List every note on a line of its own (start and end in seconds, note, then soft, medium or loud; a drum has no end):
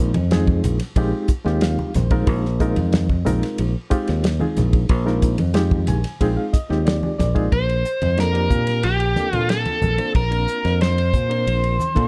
0.00 0.12 A#1 loud
0.00 0.16 G#3 medium
0.00 0.16 C4 medium
0.00 0.16 D#4 medium
0.00 0.17 F4 medium
0.00 0.16 A#4 medium
0.14 0.61 F2 medium
0.14 ride medium
0.14 high conga medium
0.14 low conga medium
0.31 0.76 G#3 medium
0.31 0.76 C4 medium
0.31 0.77 D#4 medium
0.31 0.77 F4 medium
0.31 0.77 G#4 medium
0.31 snare loud
0.31 ride medium
0.31 high conga medium
0.47 kick medium
0.47 high conga medium
0.64 0.79 A#1 medium
0.64 hi-hat pedal medium
0.64 ride medium
0.64 low conga medium
0.80 snare soft
0.80 ride medium
0.96 1.12 A#1 medium
0.96 1.31 G#3 loud
0.96 1.31 C4 medium
0.96 1.31 D#4 medium
0.96 1.31 F4 medium
0.96 1.31 G4 loud
0.96 kick medium
0.96 ride medium
1.28 muted fingered electric bass stroke soft
1.28 kick medium
1.28 hi-hat pedal medium
1.28 ride medium
1.45 1.76 D#2 medium
1.45 1.90 G#3 medium
1.45 1.91 C4 medium
1.45 1.91 D#4 medium
1.45 1.91 F4 medium
1.45 1.91 G4 medium
1.45 snare soft
1.61 1.93 F5 medium
1.61 snare medium
1.61 ride medium
1.79 high conga medium
1.94 2.26 A#1 medium
1.94 2.26 C5 medium
1.94 snare soft
1.94 hi-hat pedal medium
1.94 ride medium
1.94 high conga medium
1.94 low conga medium
2.11 2.45 G#3 medium
2.11 2.45 C4 medium
2.11 2.45 D#4 medium
2.11 2.45 F4 medium
2.11 2.45 A#4 loud
2.11 kick medium
2.11 ride medium
2.27 2.73 A#1 loud
2.27 kick medium
2.27 ride medium
2.45 snare soft
2.60 3.05 G#3 loud
2.60 3.06 C4 medium
2.60 3.06 D#4 medium
2.60 3.06 F4 medium
2.60 3.06 A#4 loud
2.60 kick medium
2.60 hi-hat pedal medium
2.60 ride medium
2.76 3.23 F2 medium
2.76 ride medium
2.76 high conga medium
2.76 low conga medium
2.92 snare loud
2.92 ride medium
2.92 high conga medium
3.09 kick medium
3.09 high conga medium
3.25 3.42 A#1 medium
3.25 3.71 G#3 medium
3.25 3.71 C4 medium
3.25 3.71 D#4 medium
3.25 3.71 F4 medium
3.25 3.71 A#4 loud
3.25 hi-hat pedal medium
3.25 ride medium
3.25 low conga medium
3.43 snare soft
3.43 ride medium
3.58 3.74 A#1 loud
3.58 ride medium
3.90 4.25 G#3 medium
3.90 4.25 C4 medium
3.90 4.25 D#4 medium
3.90 4.25 F4 medium
3.90 4.25 G4 medium
3.90 kick medium
3.90 hi-hat pedal medium
3.90 ride medium
4.07 4.39 D#2 medium
4.07 snare soft
4.07 ride medium
4.24 snare loud
4.24 ride medium
4.40 4.85 G#3 medium
4.40 4.85 C4 medium
4.40 4.85 D#4 medium
4.40 4.85 F4 medium
4.40 4.86 G#4 medium
4.40 high conga medium
4.57 4.88 A#1 loud
4.57 snare soft
4.57 hi-hat pedal medium
4.57 ride medium
4.57 low conga medium
4.73 kick medium
4.73 ride medium
4.89 5.36 A#1 loud
4.89 kick medium
4.89 ride medium
5.05 5.40 G#3 medium
5.05 5.40 C4 medium
5.05 5.40 D#4 medium
5.05 5.40 F4 medium
5.05 5.40 A#4 medium
5.05 snare soft
5.22 kick medium
5.22 hi-hat pedal medium
5.22 ride medium
5.38 5.85 F2 medium
5.38 ride medium
5.38 high conga medium
5.54 6.00 G#3 medium
5.54 6.00 C4 medium
5.54 6.00 D#4 medium
5.54 6.00 F4 medium
5.54 6.00 G4 medium
5.54 snare loud
5.54 ride medium
5.71 kick medium
5.71 high conga medium
5.87 6.04 A#1 medium
5.87 6.19 G#5 medium
5.87 hi-hat pedal medium
5.87 ride medium
5.87 low conga medium
6.04 snare soft
6.04 ride medium
6.21 6.36 A#1 medium
6.21 6.55 G#3 medium
6.21 6.55 C4 medium
6.21 6.55 D#4 medium
6.21 6.55 F4 medium
6.21 6.55 G#4 medium
6.21 6.36 G5 medium
6.21 kick medium
6.21 ride medium
6.37 6.52 F5 medium
6.53 6.84 D#5 medium
6.53 muted fingered electric bass stroke soft
6.53 kick medium
6.53 hi-hat pedal medium
6.53 ride medium
6.69 7.01 D#2 medium
6.69 7.15 G#3 medium
6.69 7.15 C4 medium
6.69 7.15 D#4 medium
6.69 7.15 F4 medium
6.69 7.16 G4 medium
6.69 snare soft
6.85 7.16 D5 medium
6.85 snare loud
6.85 ride medium
7.03 high conga medium
7.18 7.50 A#1 medium
7.18 7.49 D5 medium
7.18 snare soft
7.18 hi-hat pedal medium
7.18 ride medium
7.18 high conga medium
7.18 low conga medium
7.35 7.52 G#3 medium
7.35 7.52 C4 medium
7.35 7.52 D#4 medium
7.35 7.52 F4 medium
7.35 7.52 G#4 medium
7.35 kick medium
7.35 ride soft
7.52 7.83 A#1 medium
7.52 8.20 C5 medium
7.52 kick loud
7.52 ride medium
7.69 ride soft
7.85 hi-hat pedal medium
8.02 8.48 F2 medium
8.02 ride medium
8.02 high conga medium
8.17 8.29 A#3 medium
8.17 8.29 C4 medium
8.17 8.29 D4 medium
8.17 8.29 F4 medium
8.17 8.29 A4 medium
8.17 8.87 A#4 medium
8.17 snare medium
8.17 ride medium
8.33 8.90 A#3 medium
8.33 8.90 C4 medium
8.33 8.90 D4 medium
8.33 8.91 F4 medium
8.33 8.91 G4 medium
8.33 ride medium
8.50 8.85 A#2 medium
8.50 kick medium
8.50 hi-hat pedal medium
8.50 low conga medium
8.67 snare soft
8.67 ride medium
8.83 9.14 A#1 medium
8.83 9.35 G4 medium
8.83 ride medium
9.00 ride medium
9.16 9.28 A#3 medium
9.16 9.28 C4 medium
9.16 9.28 D4 medium
9.16 9.28 F4 medium
9.16 9.28 A4 medium
9.16 snare soft
9.16 hi-hat pedal medium
9.16 high conga medium
9.33 9.64 A#2 medium
9.33 9.78 A#3 medium
9.33 9.78 C4 medium
9.33 9.78 D4 medium
9.33 9.78 F4 medium
9.33 9.50 F4 medium
9.33 9.79 A4 medium
9.33 ride medium
9.33 high conga medium
9.49 10.12 A4 medium
9.49 snare loud
9.49 ride medium
9.65 ride medium
9.65 high conga medium
9.82 9.98 A#1 medium
9.82 hi-hat pedal medium
9.82 high conga medium
9.82 low conga medium
9.97 10.21 A#3 medium
9.97 10.21 C4 medium
9.97 10.21 D4 medium
9.97 10.21 F4 medium
9.97 10.21 C5 medium
9.97 ride medium
10.15 10.46 A#1 medium
10.15 10.81 A#4 medium
10.15 kick medium
10.15 ride medium
10.31 10.99 A#3 medium
10.31 10.99 C4 medium
10.31 10.99 D4 medium
10.31 10.99 F4 medium
10.31 10.99 A#4 medium
10.31 ride medium
10.47 hi-hat pedal medium
10.65 11.11 F2 medium
10.65 snare soft
10.65 ride soft
10.81 12.08 C5 medium
10.81 snare medium
10.81 ride medium
10.98 ride medium
11.13 11.48 A#2 medium
11.13 kick medium
11.13 hi-hat pedal medium
11.13 low conga medium
11.29 11.75 A#3 medium
11.29 11.75 C4 medium
11.29 11.75 D4 medium
11.29 11.76 F4 medium
11.29 11.76 A#4 medium
11.29 ride medium
11.47 11.78 A#1 medium
11.47 ride medium
11.64 ride soft
11.80 hi-hat pedal medium
11.80 high conga medium
11.95 12.08 A#2 medium
11.95 12.08 A#3 medium
11.95 12.08 C4 medium
11.95 12.08 D4 medium
11.95 12.08 F4 medium
11.95 12.08 A4 medium
11.95 kick medium
11.95 ride medium
11.95 high conga medium